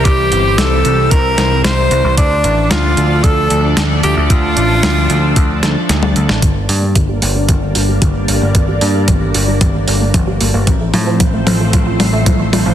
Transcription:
<<
  \new Staff \with { instrumentName = "Tenor saxophone" } { \time 4/4 \key g \dorian \tempo 4 = 113 g'4 a'4 bes'4 c''4 | d'4 f'4 a'4 r8 g'8 | f'2. r4 | r1 |
r1 | r1 | }
  \new Staff \with { instrumentName = "String machine" } { \time 4/4 \key g \dorian <e g c' g' c''>1 | <f a d' a' d''>1~ | <f a d' a' d''>1 | <g bes d' bes' d''>1~ |
<g bes d' bes' d''>1 | <f a c' a' c''>1 | }
  \new Staff \with { instrumentName = "Synth arpeggio sound" } { \time 4/4 \key g \dorian r1 | r1 | r1 | g16 bes16 d''16 bes16 g'16 g'16 bes16 bes16 g16 bes16 g'16 g16 g16 bes16 d''16 bes16 |
g'16 g'16 bes16 bes16 g16 bes16 g'16 g16 g16 bes16 d''16 bes16 g'16 g'16 bes16 bes16 | f16 a16 f'16 f16 f16 a16 c''16 a16 f'16 f'16 a16 a16 f16 a16 f'16 f16 | }
  \new Staff \with { instrumentName = "Picked electric bass" } { \clef bass \time 4/4 \key g \dorian c,8 g,,8 c,8 c,8 c,8 c,8 c,8 c,16 c,16 | d,8 a,,8 d,8 d,8 d,8 d,8 d,8 d,16 d,16 | d,8 a,,8 d,8 d,8 r8 d,16 r16 d,8 d,16 a,,16 | g,,8 g,8 g,,8 g,,8 g,,8 g,,8 g,,8 g,,16 g,,16 |
g,,8 g,8 g,,8 g,,8 g,,8 g,,8 g,,8 g,,16 g,,16 | a,,8 a,8 a,,8 a,,8 a,,8 a,,8 a,,8 a,,16 a,,16 | }
  \new DrumStaff \with { instrumentName = "Drums" } \drummode { \time 4/4 <hh bd>8 hh8 <hh sn>8 hh8 <hh bd>8 <hh sn>8 <hh sn>8 hh8 | <hh bd>8 hh8 <hh sn>8 hh8 <hh bd>8 hh8 <hh sn>8 hh8 | <hh bd>8 hh8 <hh sn>8 hh8 <hh bd>8 <hh sn>8 <hh sn>16 tommh16 hh16 sn16 | <hh bd toml>8 hho8 <hh bd toml>8 hho8 <hh bd toml>8 hho8 <hh bd toml>8 hho8 |
<hh bd toml>8 hho8 <hh bd toml>8 hho8 <hh bd toml>8 hho8 <hh bd toml>8 hho8 | <hh bd toml>8 <hho toml>8 <hh bd toml>8 <hho toml>8 <hh bd toml>8 <hho toml>8 <hh bd toml>8 <hho toml>8 | }
>>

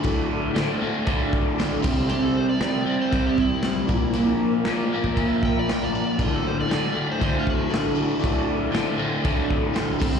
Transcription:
<<
  \new Staff \with { instrumentName = "Electric slide guitar" } { \time 4/4 \key d \mixolydian \tempo 4 = 118 fis'8 r2. r8 | g'16 a'16 c''16 d''4 c''8 g'16 e'4.~ | e'8 r2 g''16 d''16 g''16 d''16 d''8 | f'16 a'16 c''16 d''4 c''8 f'16 fis'4.~ |
fis'8 r2. r8 | }
  \new Staff \with { instrumentName = "Transistor combo organ" } { \time 4/4 \key d \mixolydian <fis' a' d''>4 <fis' a' c''>4 <fis' a' d''>4 <fis' a' d''>8 <e' g' c''>8~ | <e' g' c''>4 <e' g' c''>4 <e' g' c''>4 <e' g' c''>8 <d' bes' d''>8~ | <d' bes' d''>4 <f' bes' d''>4 <f' bes' e''>4 <f' bes' d''>4 | <fis' a' d''>4 <fis' a' d''>4 <fis' a' c''>4 <fis' a' d''>4 |
<fis' a' d''>4 <fis' a' c''>4 <fis' a' d''>4 <fis' a' c''>8 <e' g' c''>8 | }
  \new Staff \with { instrumentName = "Overdriven electric guitar" } { \clef bass \time 4/4 \key d \mixolydian <d, a, d>4 <d, a, d>8 <d, a, d>8 <d, a, d>4 <d, a, d>8 <c g c'>8 | <c g c'>4 <c g c'>8 <c g c'>8 <c g c'>4 <c g c'>8 <bes, f bes>8 | <bes, f bes>4 <bes, f bes>8 <bes, f bes>8 <bes, f bes>4 <bes, f bes>8 <bes, f bes>8 | <d, a, d>4 <d, a, d>8 <d, a, d>8 <d, a, d>4 <d, a, d>8 <d, a, d>8 |
<d, a, d>4 <d, a, d>8 <d, a, d>8 <d, a, d>4 <d, a, d>8 <c g c'>8 | }
  \new DrumStaff \with { instrumentName = "Drums" } \drummode { \time 4/4 <cymc bd>4 <cymc sn>4 <cymc bd>8 bd8 <cymc sn>8 <cymc bd>8 | cymc4 <cymc sn>4 <cymc bd>8 bd8 <cymc sn>8 bd8 | cymc4 <cymc sn>8. bd16 <cymc bd>8 bd8 <cymc sn>4 | <cymc bd>4 <cymc sn>4 <cymc bd>8 bd8 <cymc sn>4 |
<cymc bd>4 <cymc sn>4 <cymc bd>8 bd8 <cymc sn>8 <cymc bd>8 | }
>>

